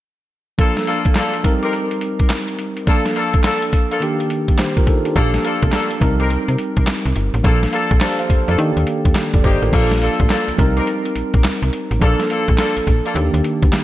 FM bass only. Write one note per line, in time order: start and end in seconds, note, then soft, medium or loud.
5.16 5.38 A#1 loud
5.63 5.71 C2 medium
6.01 6.38 C2 loud
6.48 6.56 C3 medium
6.77 6.85 C2 medium
7.06 7.14 C2 medium
7.16 7.30 G1 medium
7.34 7.42 A1 loud
7.44 7.66 A#1 loud
7.91 7.99 A#1 medium
8.30 8.37 F2 soft
8.48 8.56 F2 medium
8.58 8.73 D#3 loud
8.77 8.85 D#2 medium
9.05 9.13 D#2 medium
9.34 9.42 F1 medium
9.44 9.58 G1 medium
9.62 9.70 A1 medium
9.73 10.09 A#1 loud
10.20 10.28 A1 medium
10.48 10.52 C2 soft
10.59 10.81 C2 loud
11.16 11.23 A#1 soft
11.34 11.42 A#1 medium
11.62 11.70 C2 medium
11.91 11.99 A1 medium
12.01 12.16 A#1 loud
12.49 12.56 A#1 loud
12.77 12.81 A#1 soft
12.87 13.01 A#1 medium
13.15 13.30 D#2 loud
13.34 13.42 D#2 medium
13.63 13.71 D2 medium